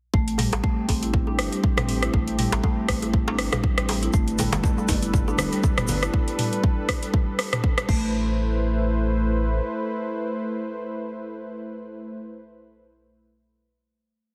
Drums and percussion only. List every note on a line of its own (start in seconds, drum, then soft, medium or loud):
0.14 kick loud
0.28 closed hi-hat soft
0.38 mid tom medium
0.38 open hi-hat medium
0.38 djembe tone medium
0.53 closed hi-hat medium
0.53 djembe slap loud
0.64 kick loud
0.89 kick medium
0.89 open hi-hat loud
0.89 djembe tone loud
1.03 closed hi-hat medium
1.14 kick loud
1.27 djembe tone medium
1.39 cross-stick medium
1.39 open hi-hat loud
1.53 closed hi-hat medium
1.64 kick loud
1.77 cross-stick loud
1.77 closed hi-hat soft
1.77 mid tom loud
1.77 djembe tone loud
1.89 open hi-hat medium
2.03 cross-stick medium
2.03 closed hi-hat medium
2.14 kick loud
2.14 djembe tone medium
2.28 closed hi-hat soft
2.39 mid tom medium
2.39 open hi-hat loud
2.52 closed hi-hat medium
2.52 djembe slap loud
2.64 kick loud
2.64 djembe tone loud
2.89 kick medium
2.89 cross-stick loud
2.89 open hi-hat loud
3.02 closed hi-hat medium
3.02 djembe tone medium
3.14 kick loud
3.28 djembe slap loud
3.39 cross-stick loud
3.39 open hi-hat loud
3.52 cross-stick loud
3.52 closed hi-hat medium
3.52 mid tom medium
3.52 djembe tone loud
3.64 kick loud
3.78 cross-stick loud
3.78 closed hi-hat soft
3.89 open hi-hat loud
3.89 djembe slap medium
3.89 djembe tone medium
4.03 closed hi-hat medium
4.13 kick loud
4.13 shaker medium
4.28 closed hi-hat soft
4.28 shaker soft
4.39 mid tom medium
4.39 open hi-hat medium
4.39 high conga medium
4.39 djembe tone loud
4.39 shaker loud
4.52 closed hi-hat medium
4.52 djembe slap loud
4.52 high conga loud
4.52 shaker soft
4.64 kick loud
4.64 low conga medium
4.64 shaker medium
4.78 djembe tone medium
4.78 shaker soft
4.89 kick medium
4.89 open hi-hat medium
4.89 low conga loud
4.89 shaker loud
5.02 closed hi-hat medium
5.02 shaker soft
5.14 kick loud
5.14 low conga medium
5.14 shaker medium
5.28 djembe tone medium
5.28 shaker soft
5.38 cross-stick loud
5.38 open hi-hat medium
5.38 high conga loud
5.38 shaker loud
5.52 closed hi-hat medium
5.52 shaker soft
5.64 kick loud
5.64 high conga medium
5.64 djembe tone medium
5.64 shaker medium
5.78 cross-stick loud
5.78 closed hi-hat soft
5.78 mid tom medium
5.78 shaker soft
5.88 open hi-hat medium
5.88 high conga loud
5.88 shaker loud
6.02 cross-stick loud
6.02 closed hi-hat medium
6.02 shaker soft
6.14 kick loud
6.28 closed hi-hat soft
6.39 mid tom medium
6.39 open hi-hat medium
6.53 closed hi-hat medium
6.64 kick loud
6.89 kick medium
6.89 cross-stick loud
6.89 open hi-hat medium
7.03 closed hi-hat medium
7.14 kick loud
7.39 cross-stick loud
7.39 open hi-hat medium
7.53 cross-stick loud
7.53 closed hi-hat medium
7.53 mid tom medium
7.64 kick loud
7.78 cross-stick loud
7.78 closed hi-hat soft
7.89 kick loud
7.89 crash medium